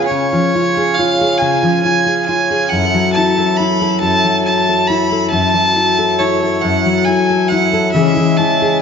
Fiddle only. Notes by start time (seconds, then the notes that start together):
0.06 C#5
0.94 F5
1.38 G#5
1.82 G#5
2.26 G#5
2.69 F#5
3.13 A5
3.56 B5
4.00 A5
4.45 A5
4.87 B5
5.30 A5
6.19 C#5
6.61 F#5
7.04 G#5
7.48 F#5
7.92 E5
8.37 A5